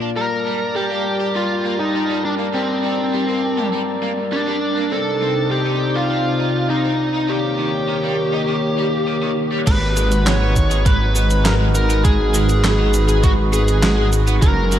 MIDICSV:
0, 0, Header, 1, 6, 480
1, 0, Start_track
1, 0, Key_signature, -2, "minor"
1, 0, Tempo, 594059
1, 135, Time_signature, 4, 2, 24, 8
1, 7815, Key_signature, 5, "minor"
1, 11950, End_track
2, 0, Start_track
2, 0, Title_t, "Lead electric guitar"
2, 0, Program_c, 0, 29
2, 135, Note_on_c, 0, 70, 108
2, 611, Note_off_c, 0, 70, 0
2, 614, Note_on_c, 0, 67, 102
2, 1094, Note_on_c, 0, 65, 97
2, 1109, Note_off_c, 0, 67, 0
2, 1451, Note_off_c, 0, 65, 0
2, 1454, Note_on_c, 0, 63, 93
2, 1812, Note_off_c, 0, 63, 0
2, 1815, Note_on_c, 0, 62, 91
2, 1880, Note_off_c, 0, 62, 0
2, 2055, Note_on_c, 0, 60, 82
2, 2982, Note_off_c, 0, 60, 0
2, 3494, Note_on_c, 0, 62, 95
2, 3974, Note_on_c, 0, 69, 108
2, 3989, Note_off_c, 0, 62, 0
2, 4451, Note_off_c, 0, 69, 0
2, 4454, Note_on_c, 0, 67, 100
2, 4813, Note_on_c, 0, 65, 95
2, 4825, Note_off_c, 0, 67, 0
2, 5411, Note_off_c, 0, 65, 0
2, 5414, Note_on_c, 0, 63, 93
2, 5894, Note_on_c, 0, 67, 96
2, 5909, Note_off_c, 0, 63, 0
2, 7542, Note_off_c, 0, 67, 0
2, 7814, Note_on_c, 0, 71, 107
2, 8293, Note_on_c, 0, 73, 111
2, 8309, Note_off_c, 0, 71, 0
2, 8742, Note_off_c, 0, 73, 0
2, 8774, Note_on_c, 0, 71, 101
2, 9251, Note_off_c, 0, 71, 0
2, 9255, Note_on_c, 0, 70, 103
2, 9319, Note_off_c, 0, 70, 0
2, 9494, Note_on_c, 0, 70, 103
2, 9730, Note_off_c, 0, 70, 0
2, 9734, Note_on_c, 0, 68, 102
2, 10694, Note_on_c, 0, 66, 89
2, 10723, Note_off_c, 0, 68, 0
2, 10759, Note_off_c, 0, 66, 0
2, 10934, Note_on_c, 0, 68, 85
2, 11382, Note_off_c, 0, 68, 0
2, 11655, Note_on_c, 0, 70, 109
2, 11950, Note_off_c, 0, 70, 0
2, 11950, End_track
3, 0, Start_track
3, 0, Title_t, "Analog synth pad"
3, 0, Program_c, 1, 89
3, 0, Note_on_c, 1, 46, 83
3, 0, Note_on_c, 1, 58, 75
3, 0, Note_on_c, 1, 65, 71
3, 0, Note_on_c, 1, 74, 87
3, 102, Note_off_c, 1, 58, 0
3, 102, Note_off_c, 1, 74, 0
3, 103, Note_off_c, 1, 46, 0
3, 103, Note_off_c, 1, 65, 0
3, 133, Note_on_c, 1, 55, 83
3, 133, Note_on_c, 1, 70, 90
3, 133, Note_on_c, 1, 74, 76
3, 133, Note_on_c, 1, 81, 75
3, 3941, Note_off_c, 1, 70, 0
3, 3941, Note_off_c, 1, 74, 0
3, 3941, Note_off_c, 1, 81, 0
3, 3942, Note_off_c, 1, 55, 0
3, 3974, Note_on_c, 1, 60, 75
3, 3974, Note_on_c, 1, 63, 75
3, 3974, Note_on_c, 1, 74, 89
3, 3975, Note_on_c, 1, 48, 81
3, 5875, Note_off_c, 1, 48, 0
3, 5875, Note_off_c, 1, 60, 0
3, 5875, Note_off_c, 1, 63, 0
3, 5875, Note_off_c, 1, 74, 0
3, 5893, Note_on_c, 1, 58, 76
3, 5893, Note_on_c, 1, 73, 88
3, 5894, Note_on_c, 1, 51, 84
3, 5894, Note_on_c, 1, 67, 73
3, 7795, Note_off_c, 1, 51, 0
3, 7795, Note_off_c, 1, 58, 0
3, 7795, Note_off_c, 1, 67, 0
3, 7795, Note_off_c, 1, 73, 0
3, 7814, Note_on_c, 1, 56, 80
3, 7814, Note_on_c, 1, 63, 75
3, 7814, Note_on_c, 1, 66, 77
3, 7814, Note_on_c, 1, 71, 93
3, 11622, Note_off_c, 1, 56, 0
3, 11622, Note_off_c, 1, 63, 0
3, 11622, Note_off_c, 1, 71, 0
3, 11654, Note_on_c, 1, 68, 90
3, 11655, Note_on_c, 1, 56, 83
3, 11950, Note_off_c, 1, 56, 0
3, 11950, Note_off_c, 1, 66, 0
3, 11950, Note_off_c, 1, 68, 0
3, 11950, End_track
4, 0, Start_track
4, 0, Title_t, "Overdriven electric guitar"
4, 0, Program_c, 2, 29
4, 14, Note_on_c, 2, 62, 73
4, 74, Note_off_c, 2, 62, 0
4, 134, Note_on_c, 2, 55, 97
4, 194, Note_off_c, 2, 55, 0
4, 375, Note_on_c, 2, 55, 71
4, 465, Note_off_c, 2, 55, 0
4, 614, Note_on_c, 2, 55, 76
4, 675, Note_off_c, 2, 55, 0
4, 734, Note_on_c, 2, 58, 74
4, 824, Note_off_c, 2, 58, 0
4, 974, Note_on_c, 2, 67, 96
4, 1034, Note_off_c, 2, 67, 0
4, 1095, Note_on_c, 2, 55, 93
4, 1155, Note_off_c, 2, 55, 0
4, 1334, Note_on_c, 2, 58, 96
4, 1394, Note_off_c, 2, 58, 0
4, 1575, Note_on_c, 2, 55, 76
4, 1635, Note_off_c, 2, 55, 0
4, 1695, Note_on_c, 2, 55, 93
4, 1755, Note_off_c, 2, 55, 0
4, 1935, Note_on_c, 2, 58, 72
4, 1995, Note_off_c, 2, 58, 0
4, 2055, Note_on_c, 2, 55, 95
4, 2115, Note_off_c, 2, 55, 0
4, 2295, Note_on_c, 2, 55, 72
4, 2385, Note_off_c, 2, 55, 0
4, 2535, Note_on_c, 2, 55, 80
4, 2595, Note_off_c, 2, 55, 0
4, 2655, Note_on_c, 2, 58, 75
4, 2745, Note_off_c, 2, 58, 0
4, 2895, Note_on_c, 2, 67, 100
4, 2955, Note_off_c, 2, 67, 0
4, 3015, Note_on_c, 2, 55, 95
4, 3075, Note_off_c, 2, 55, 0
4, 3255, Note_on_c, 2, 58, 97
4, 3315, Note_off_c, 2, 58, 0
4, 3495, Note_on_c, 2, 55, 76
4, 3555, Note_off_c, 2, 55, 0
4, 3615, Note_on_c, 2, 55, 99
4, 3675, Note_off_c, 2, 55, 0
4, 3855, Note_on_c, 2, 58, 73
4, 3915, Note_off_c, 2, 58, 0
4, 3975, Note_on_c, 2, 60, 97
4, 4035, Note_off_c, 2, 60, 0
4, 4215, Note_on_c, 2, 60, 75
4, 4305, Note_off_c, 2, 60, 0
4, 4455, Note_on_c, 2, 60, 75
4, 4515, Note_off_c, 2, 60, 0
4, 4576, Note_on_c, 2, 63, 72
4, 4665, Note_off_c, 2, 63, 0
4, 4815, Note_on_c, 2, 72, 94
4, 4875, Note_off_c, 2, 72, 0
4, 4935, Note_on_c, 2, 60, 94
4, 4995, Note_off_c, 2, 60, 0
4, 5175, Note_on_c, 2, 63, 96
4, 5235, Note_off_c, 2, 63, 0
4, 5415, Note_on_c, 2, 60, 74
4, 5475, Note_off_c, 2, 60, 0
4, 5535, Note_on_c, 2, 60, 101
4, 5595, Note_off_c, 2, 60, 0
4, 5775, Note_on_c, 2, 63, 78
4, 5835, Note_off_c, 2, 63, 0
4, 5895, Note_on_c, 2, 51, 95
4, 5955, Note_off_c, 2, 51, 0
4, 6135, Note_on_c, 2, 51, 73
4, 6225, Note_off_c, 2, 51, 0
4, 6374, Note_on_c, 2, 51, 80
4, 6435, Note_off_c, 2, 51, 0
4, 6494, Note_on_c, 2, 55, 76
4, 6584, Note_off_c, 2, 55, 0
4, 6734, Note_on_c, 2, 63, 101
4, 6795, Note_off_c, 2, 63, 0
4, 6855, Note_on_c, 2, 51, 97
4, 6915, Note_off_c, 2, 51, 0
4, 7094, Note_on_c, 2, 55, 95
4, 7155, Note_off_c, 2, 55, 0
4, 7335, Note_on_c, 2, 51, 79
4, 7395, Note_off_c, 2, 51, 0
4, 7455, Note_on_c, 2, 51, 97
4, 7515, Note_off_c, 2, 51, 0
4, 7695, Note_on_c, 2, 55, 79
4, 7755, Note_off_c, 2, 55, 0
4, 7815, Note_on_c, 2, 56, 99
4, 7875, Note_off_c, 2, 56, 0
4, 8055, Note_on_c, 2, 56, 77
4, 8145, Note_off_c, 2, 56, 0
4, 8295, Note_on_c, 2, 56, 79
4, 8355, Note_off_c, 2, 56, 0
4, 8415, Note_on_c, 2, 59, 78
4, 8505, Note_off_c, 2, 59, 0
4, 8655, Note_on_c, 2, 68, 98
4, 8715, Note_off_c, 2, 68, 0
4, 8774, Note_on_c, 2, 56, 97
4, 8835, Note_off_c, 2, 56, 0
4, 9015, Note_on_c, 2, 59, 103
4, 9075, Note_off_c, 2, 59, 0
4, 9254, Note_on_c, 2, 56, 82
4, 9314, Note_off_c, 2, 56, 0
4, 9374, Note_on_c, 2, 56, 103
4, 9434, Note_off_c, 2, 56, 0
4, 9614, Note_on_c, 2, 59, 75
4, 9674, Note_off_c, 2, 59, 0
4, 9734, Note_on_c, 2, 56, 100
4, 9794, Note_off_c, 2, 56, 0
4, 9975, Note_on_c, 2, 56, 74
4, 10065, Note_off_c, 2, 56, 0
4, 10214, Note_on_c, 2, 56, 80
4, 10275, Note_off_c, 2, 56, 0
4, 10335, Note_on_c, 2, 59, 80
4, 10425, Note_off_c, 2, 59, 0
4, 10574, Note_on_c, 2, 68, 101
4, 10634, Note_off_c, 2, 68, 0
4, 10695, Note_on_c, 2, 56, 105
4, 10755, Note_off_c, 2, 56, 0
4, 10935, Note_on_c, 2, 59, 106
4, 10995, Note_off_c, 2, 59, 0
4, 11175, Note_on_c, 2, 56, 85
4, 11235, Note_off_c, 2, 56, 0
4, 11295, Note_on_c, 2, 56, 102
4, 11355, Note_off_c, 2, 56, 0
4, 11535, Note_on_c, 2, 59, 79
4, 11595, Note_off_c, 2, 59, 0
4, 11654, Note_on_c, 2, 54, 105
4, 11715, Note_off_c, 2, 54, 0
4, 11894, Note_on_c, 2, 54, 76
4, 11950, Note_off_c, 2, 54, 0
4, 11950, End_track
5, 0, Start_track
5, 0, Title_t, "Detuned saw bass"
5, 0, Program_c, 3, 39
5, 7815, Note_on_c, 3, 32, 92
5, 11631, Note_off_c, 3, 32, 0
5, 11655, Note_on_c, 3, 30, 91
5, 11950, Note_off_c, 3, 30, 0
5, 11950, End_track
6, 0, Start_track
6, 0, Title_t, "Drums"
6, 7814, Note_on_c, 9, 36, 122
6, 7815, Note_on_c, 9, 42, 100
6, 7815, Note_on_c, 9, 49, 105
6, 7815, Note_on_c, 9, 82, 29
6, 7895, Note_off_c, 9, 36, 0
6, 7896, Note_off_c, 9, 42, 0
6, 7896, Note_off_c, 9, 49, 0
6, 7896, Note_off_c, 9, 82, 0
6, 8055, Note_on_c, 9, 42, 71
6, 8055, Note_on_c, 9, 82, 74
6, 8136, Note_off_c, 9, 42, 0
6, 8136, Note_off_c, 9, 82, 0
6, 8175, Note_on_c, 9, 42, 70
6, 8175, Note_on_c, 9, 82, 42
6, 8255, Note_off_c, 9, 42, 0
6, 8255, Note_off_c, 9, 82, 0
6, 8295, Note_on_c, 9, 38, 127
6, 8295, Note_on_c, 9, 39, 106
6, 8295, Note_on_c, 9, 42, 105
6, 8295, Note_on_c, 9, 82, 30
6, 8376, Note_off_c, 9, 38, 0
6, 8376, Note_off_c, 9, 39, 0
6, 8376, Note_off_c, 9, 42, 0
6, 8376, Note_off_c, 9, 82, 0
6, 8534, Note_on_c, 9, 36, 65
6, 8535, Note_on_c, 9, 42, 70
6, 8535, Note_on_c, 9, 82, 70
6, 8615, Note_off_c, 9, 36, 0
6, 8615, Note_off_c, 9, 42, 0
6, 8615, Note_off_c, 9, 82, 0
6, 8655, Note_on_c, 9, 42, 73
6, 8655, Note_on_c, 9, 82, 40
6, 8736, Note_off_c, 9, 42, 0
6, 8736, Note_off_c, 9, 82, 0
6, 8774, Note_on_c, 9, 36, 127
6, 8775, Note_on_c, 9, 42, 101
6, 8775, Note_on_c, 9, 82, 29
6, 8855, Note_off_c, 9, 36, 0
6, 8856, Note_off_c, 9, 42, 0
6, 8856, Note_off_c, 9, 82, 0
6, 9015, Note_on_c, 9, 42, 66
6, 9015, Note_on_c, 9, 82, 70
6, 9096, Note_off_c, 9, 42, 0
6, 9096, Note_off_c, 9, 82, 0
6, 9135, Note_on_c, 9, 42, 61
6, 9135, Note_on_c, 9, 82, 39
6, 9216, Note_off_c, 9, 42, 0
6, 9216, Note_off_c, 9, 82, 0
6, 9255, Note_on_c, 9, 38, 120
6, 9255, Note_on_c, 9, 39, 101
6, 9255, Note_on_c, 9, 42, 102
6, 9255, Note_on_c, 9, 82, 30
6, 9336, Note_off_c, 9, 38, 0
6, 9336, Note_off_c, 9, 39, 0
6, 9336, Note_off_c, 9, 42, 0
6, 9336, Note_off_c, 9, 82, 0
6, 9495, Note_on_c, 9, 42, 70
6, 9495, Note_on_c, 9, 82, 67
6, 9576, Note_off_c, 9, 42, 0
6, 9576, Note_off_c, 9, 82, 0
6, 9615, Note_on_c, 9, 42, 71
6, 9615, Note_on_c, 9, 82, 41
6, 9696, Note_off_c, 9, 42, 0
6, 9696, Note_off_c, 9, 82, 0
6, 9734, Note_on_c, 9, 36, 127
6, 9735, Note_on_c, 9, 42, 94
6, 9735, Note_on_c, 9, 82, 28
6, 9815, Note_off_c, 9, 36, 0
6, 9816, Note_off_c, 9, 42, 0
6, 9816, Note_off_c, 9, 82, 0
6, 9975, Note_on_c, 9, 42, 76
6, 9975, Note_on_c, 9, 82, 68
6, 10055, Note_off_c, 9, 42, 0
6, 10055, Note_off_c, 9, 82, 0
6, 10095, Note_on_c, 9, 42, 70
6, 10095, Note_on_c, 9, 82, 41
6, 10175, Note_off_c, 9, 42, 0
6, 10175, Note_off_c, 9, 82, 0
6, 10215, Note_on_c, 9, 38, 127
6, 10215, Note_on_c, 9, 39, 102
6, 10215, Note_on_c, 9, 42, 107
6, 10215, Note_on_c, 9, 82, 30
6, 10295, Note_off_c, 9, 38, 0
6, 10295, Note_off_c, 9, 39, 0
6, 10295, Note_off_c, 9, 42, 0
6, 10295, Note_off_c, 9, 82, 0
6, 10455, Note_on_c, 9, 42, 72
6, 10455, Note_on_c, 9, 82, 71
6, 10535, Note_off_c, 9, 42, 0
6, 10535, Note_off_c, 9, 82, 0
6, 10575, Note_on_c, 9, 42, 71
6, 10575, Note_on_c, 9, 82, 39
6, 10656, Note_off_c, 9, 42, 0
6, 10656, Note_off_c, 9, 82, 0
6, 10694, Note_on_c, 9, 36, 127
6, 10695, Note_on_c, 9, 42, 95
6, 10695, Note_on_c, 9, 82, 28
6, 10775, Note_off_c, 9, 36, 0
6, 10775, Note_off_c, 9, 42, 0
6, 10775, Note_off_c, 9, 82, 0
6, 10935, Note_on_c, 9, 42, 70
6, 10935, Note_on_c, 9, 82, 68
6, 11015, Note_off_c, 9, 42, 0
6, 11015, Note_off_c, 9, 82, 0
6, 11055, Note_on_c, 9, 42, 66
6, 11055, Note_on_c, 9, 82, 37
6, 11136, Note_off_c, 9, 42, 0
6, 11136, Note_off_c, 9, 82, 0
6, 11175, Note_on_c, 9, 38, 127
6, 11175, Note_on_c, 9, 39, 99
6, 11175, Note_on_c, 9, 42, 97
6, 11175, Note_on_c, 9, 82, 29
6, 11256, Note_off_c, 9, 38, 0
6, 11256, Note_off_c, 9, 39, 0
6, 11256, Note_off_c, 9, 42, 0
6, 11256, Note_off_c, 9, 82, 0
6, 11415, Note_on_c, 9, 42, 69
6, 11415, Note_on_c, 9, 82, 64
6, 11495, Note_off_c, 9, 42, 0
6, 11495, Note_off_c, 9, 82, 0
6, 11535, Note_on_c, 9, 42, 73
6, 11535, Note_on_c, 9, 82, 37
6, 11615, Note_off_c, 9, 42, 0
6, 11615, Note_off_c, 9, 82, 0
6, 11654, Note_on_c, 9, 36, 127
6, 11655, Note_on_c, 9, 42, 94
6, 11655, Note_on_c, 9, 82, 29
6, 11735, Note_off_c, 9, 36, 0
6, 11735, Note_off_c, 9, 42, 0
6, 11735, Note_off_c, 9, 82, 0
6, 11895, Note_on_c, 9, 42, 71
6, 11895, Note_on_c, 9, 82, 71
6, 11950, Note_off_c, 9, 42, 0
6, 11950, Note_off_c, 9, 82, 0
6, 11950, End_track
0, 0, End_of_file